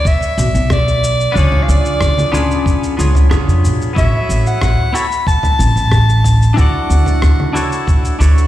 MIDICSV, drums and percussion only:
0, 0, Header, 1, 2, 480
1, 0, Start_track
1, 0, Key_signature, 3, "major"
1, 0, Tempo, 652174
1, 997, Time_signature, 4, 2, 24, 8
1, 6236, End_track
2, 0, Start_track
2, 0, Title_t, "Drums"
2, 38, Note_on_c, 9, 36, 115
2, 43, Note_on_c, 9, 69, 48
2, 112, Note_off_c, 9, 36, 0
2, 116, Note_off_c, 9, 69, 0
2, 165, Note_on_c, 9, 69, 33
2, 239, Note_off_c, 9, 69, 0
2, 283, Note_on_c, 9, 69, 88
2, 356, Note_off_c, 9, 69, 0
2, 406, Note_on_c, 9, 69, 37
2, 479, Note_off_c, 9, 69, 0
2, 516, Note_on_c, 9, 37, 107
2, 516, Note_on_c, 9, 45, 73
2, 518, Note_on_c, 9, 36, 111
2, 523, Note_on_c, 9, 69, 44
2, 590, Note_off_c, 9, 37, 0
2, 590, Note_off_c, 9, 45, 0
2, 592, Note_off_c, 9, 36, 0
2, 597, Note_off_c, 9, 69, 0
2, 647, Note_on_c, 9, 69, 30
2, 720, Note_off_c, 9, 69, 0
2, 764, Note_on_c, 9, 69, 85
2, 838, Note_off_c, 9, 69, 0
2, 886, Note_on_c, 9, 69, 37
2, 960, Note_off_c, 9, 69, 0
2, 998, Note_on_c, 9, 36, 98
2, 1004, Note_on_c, 9, 69, 43
2, 1072, Note_off_c, 9, 36, 0
2, 1077, Note_off_c, 9, 69, 0
2, 1119, Note_on_c, 9, 45, 71
2, 1193, Note_off_c, 9, 45, 0
2, 1244, Note_on_c, 9, 69, 84
2, 1317, Note_off_c, 9, 69, 0
2, 1365, Note_on_c, 9, 69, 33
2, 1439, Note_off_c, 9, 69, 0
2, 1476, Note_on_c, 9, 37, 99
2, 1478, Note_on_c, 9, 36, 104
2, 1483, Note_on_c, 9, 69, 47
2, 1550, Note_off_c, 9, 37, 0
2, 1551, Note_off_c, 9, 36, 0
2, 1557, Note_off_c, 9, 69, 0
2, 1602, Note_on_c, 9, 64, 72
2, 1608, Note_on_c, 9, 69, 32
2, 1675, Note_off_c, 9, 64, 0
2, 1682, Note_off_c, 9, 69, 0
2, 1717, Note_on_c, 9, 45, 72
2, 1718, Note_on_c, 9, 64, 69
2, 1724, Note_on_c, 9, 69, 76
2, 1791, Note_off_c, 9, 45, 0
2, 1792, Note_off_c, 9, 64, 0
2, 1798, Note_off_c, 9, 69, 0
2, 1848, Note_on_c, 9, 69, 35
2, 1921, Note_off_c, 9, 69, 0
2, 1957, Note_on_c, 9, 36, 110
2, 1965, Note_on_c, 9, 69, 43
2, 2031, Note_off_c, 9, 36, 0
2, 2039, Note_off_c, 9, 69, 0
2, 2086, Note_on_c, 9, 69, 32
2, 2160, Note_off_c, 9, 69, 0
2, 2203, Note_on_c, 9, 69, 83
2, 2277, Note_off_c, 9, 69, 0
2, 2319, Note_on_c, 9, 45, 75
2, 2326, Note_on_c, 9, 69, 37
2, 2393, Note_off_c, 9, 45, 0
2, 2400, Note_off_c, 9, 69, 0
2, 2437, Note_on_c, 9, 36, 99
2, 2437, Note_on_c, 9, 37, 106
2, 2444, Note_on_c, 9, 69, 46
2, 2510, Note_off_c, 9, 37, 0
2, 2511, Note_off_c, 9, 36, 0
2, 2517, Note_off_c, 9, 69, 0
2, 2567, Note_on_c, 9, 69, 31
2, 2641, Note_off_c, 9, 69, 0
2, 2685, Note_on_c, 9, 69, 76
2, 2758, Note_off_c, 9, 69, 0
2, 2809, Note_on_c, 9, 69, 34
2, 2882, Note_off_c, 9, 69, 0
2, 2917, Note_on_c, 9, 36, 103
2, 2925, Note_on_c, 9, 69, 44
2, 2991, Note_off_c, 9, 36, 0
2, 2998, Note_off_c, 9, 69, 0
2, 3165, Note_on_c, 9, 69, 83
2, 3238, Note_off_c, 9, 69, 0
2, 3287, Note_on_c, 9, 69, 31
2, 3361, Note_off_c, 9, 69, 0
2, 3397, Note_on_c, 9, 36, 106
2, 3397, Note_on_c, 9, 37, 95
2, 3397, Note_on_c, 9, 45, 76
2, 3403, Note_on_c, 9, 69, 42
2, 3470, Note_off_c, 9, 37, 0
2, 3470, Note_off_c, 9, 45, 0
2, 3471, Note_off_c, 9, 36, 0
2, 3477, Note_off_c, 9, 69, 0
2, 3645, Note_on_c, 9, 69, 80
2, 3718, Note_off_c, 9, 69, 0
2, 3767, Note_on_c, 9, 69, 35
2, 3840, Note_off_c, 9, 69, 0
2, 3877, Note_on_c, 9, 36, 107
2, 3884, Note_on_c, 9, 69, 43
2, 3950, Note_off_c, 9, 36, 0
2, 3958, Note_off_c, 9, 69, 0
2, 3998, Note_on_c, 9, 45, 76
2, 4005, Note_on_c, 9, 69, 32
2, 4072, Note_off_c, 9, 45, 0
2, 4079, Note_off_c, 9, 69, 0
2, 4123, Note_on_c, 9, 69, 82
2, 4196, Note_off_c, 9, 69, 0
2, 4244, Note_on_c, 9, 69, 36
2, 4318, Note_off_c, 9, 69, 0
2, 4354, Note_on_c, 9, 37, 95
2, 4357, Note_on_c, 9, 36, 104
2, 4361, Note_on_c, 9, 69, 43
2, 4427, Note_off_c, 9, 37, 0
2, 4430, Note_off_c, 9, 36, 0
2, 4434, Note_off_c, 9, 69, 0
2, 4484, Note_on_c, 9, 69, 30
2, 4557, Note_off_c, 9, 69, 0
2, 4595, Note_on_c, 9, 45, 77
2, 4602, Note_on_c, 9, 69, 82
2, 4669, Note_off_c, 9, 45, 0
2, 4676, Note_off_c, 9, 69, 0
2, 4725, Note_on_c, 9, 69, 33
2, 4799, Note_off_c, 9, 69, 0
2, 4837, Note_on_c, 9, 36, 93
2, 4843, Note_on_c, 9, 69, 42
2, 4911, Note_off_c, 9, 36, 0
2, 4916, Note_off_c, 9, 69, 0
2, 5082, Note_on_c, 9, 69, 75
2, 5156, Note_off_c, 9, 69, 0
2, 5198, Note_on_c, 9, 45, 76
2, 5205, Note_on_c, 9, 69, 33
2, 5272, Note_off_c, 9, 45, 0
2, 5279, Note_off_c, 9, 69, 0
2, 5315, Note_on_c, 9, 37, 99
2, 5317, Note_on_c, 9, 36, 102
2, 5322, Note_on_c, 9, 69, 44
2, 5389, Note_off_c, 9, 37, 0
2, 5391, Note_off_c, 9, 36, 0
2, 5396, Note_off_c, 9, 69, 0
2, 5445, Note_on_c, 9, 64, 80
2, 5518, Note_off_c, 9, 64, 0
2, 5556, Note_on_c, 9, 64, 67
2, 5563, Note_on_c, 9, 69, 72
2, 5630, Note_off_c, 9, 64, 0
2, 5636, Note_off_c, 9, 69, 0
2, 5684, Note_on_c, 9, 69, 35
2, 5758, Note_off_c, 9, 69, 0
2, 5794, Note_on_c, 9, 45, 75
2, 5797, Note_on_c, 9, 36, 104
2, 5801, Note_on_c, 9, 69, 42
2, 5868, Note_off_c, 9, 45, 0
2, 5871, Note_off_c, 9, 36, 0
2, 5875, Note_off_c, 9, 69, 0
2, 5924, Note_on_c, 9, 69, 32
2, 5998, Note_off_c, 9, 69, 0
2, 6042, Note_on_c, 9, 69, 75
2, 6115, Note_off_c, 9, 69, 0
2, 6165, Note_on_c, 9, 69, 34
2, 6236, Note_off_c, 9, 69, 0
2, 6236, End_track
0, 0, End_of_file